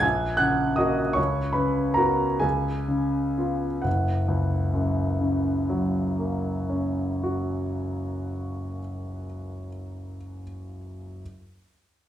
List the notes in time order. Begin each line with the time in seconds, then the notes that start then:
0.00 A#1 G#5 G#6
0.37 C#3 F#5 F#6
0.76 A#3 F#4 D#5 D#6
1.13 C#2 C#5 C#6
1.53 C#3 B4 B5
1.94 B3 F#4 A#4 A#5
2.40 C#2 G#4 G#5
2.88 C#3
3.38 B3 F4
3.82 F#1 F#5
4.28 C#2
4.74 F#2
5.20 C#3
5.69 F#3
6.19 A#3
6.70 C#4
7.24 F#4